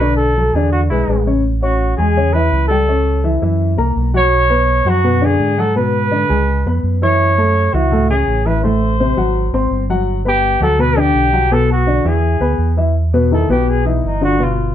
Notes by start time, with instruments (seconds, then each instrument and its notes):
Already playing: fingered electric bass B1, trumpet B4
0.01 grand piano D3 D4 D5
0.16 trumpet A4
0.37 grand piano F#3 F#4 A4
0.53 fingered electric bass E2, grand piano D3 D4 D5, trumpet G#4
0.72 trumpet F#4
0.90 fingered electric bass B1, grand piano G#3 G#4 B4, trumpet E4
1.08 fingered electric bass A1, grand piano G#3 G#4 B4
1.27 grand piano C#3 C#4 C#5
1.62 grand piano C#4 C#5 C#6, trumpet F#4
1.97 fingered electric bass E2, grand piano G#3 G#4 G#5, trumpet G#4
2.17 grand piano C#3 C#4 C#5
2.33 grand piano E3 E4 E5, trumpet B4
2.52 fingered electric bass C#2
2.67 grand piano G3 G4 G5, trumpet A4
2.88 grand piano C#3 C#4 C#5
3.24 grand piano E3 E4 E5
3.42 fingered electric bass F#2, grand piano E3 E4 E5
3.77 fingered electric bass C2, grand piano A#3 A#4 A#5
3.95 fingered electric bass B1
4.14 grand piano F#3 F#4 F#5, trumpet C#5
4.50 grand piano B3 B4 B5
4.85 fingered electric bass F#2, grand piano F#3 F#4 F#5, trumpet F#4
5.04 grand piano B2 B3 B4
5.21 grand piano D3 D4 D5, trumpet G#4
5.39 fingered electric bass G#2
5.58 grand piano F#3 F#4 F#5, trumpet A4
5.75 grand piano B2 B3 B4, trumpet B4
6.11 grand piano D3 D4 D5
6.29 fingered electric bass C#2, grand piano G#3 G#4 G#5
6.65 fingered electric bass F2, grand piano B3 B4 B5
6.83 fingered electric bass F#2
7.02 grand piano E3 E4 E5, trumpet C#5
7.38 grand piano A3 A4 A5
7.73 fingered electric bass C#2, grand piano E3 E4 E5, trumpet F#4
7.91 grand piano A2 A3 A4
8.10 grand piano C#3 C#4 C#5, trumpet G#4
8.28 fingered electric bass A1
8.46 grand piano E3 E4 E5, trumpet B4
8.63 grand piano A2 A3 A4, trumpet C5
9.00 grand piano C3 C4 C5
9.17 fingered electric bass G#1, grand piano F#3 F#4 F#5
9.53 fingered electric bass G#1, grand piano C4 C5 C6
9.71 fingered electric bass G1
9.90 grand piano F#3 F#4 F#5
10.25 grand piano B3 B4 B5, trumpet G4
10.60 fingered electric bass D2, grand piano F#3 F#4 F#5, trumpet A4
10.79 grand piano B2 B3 B4, trumpet B4
10.97 grand piano D3 D4 D5, trumpet G4
11.14 fingered electric bass B1
11.33 grand piano F#3 F#4 F#5
11.51 grand piano B2 B3 B4, trumpet A4
11.72 trumpet F#4
11.87 grand piano D3 D4 D5
12.05 fingered electric bass E2, grand piano E3 E4 E5, trumpet G#4
12.40 fingered electric bass D2, grand piano B3 B4 B5
12.58 fingered electric bass E2
12.77 grand piano E3 E4 E5
13.14 grand piano B2 B3 B4
13.31 grand piano D#3 D#4 E4, trumpet A4
13.49 fingered electric bass B1, grand piano B2 B3 B4, trumpet G4
13.69 trumpet G#4
13.85 grand piano E3 D#4 E4, trumpet B3
14.04 fingered electric bass G1, trumpet D#4
14.21 grand piano D3 D4 F4, trumpet F#4
14.39 grand piano B2 B3 B4
14.43 trumpet F4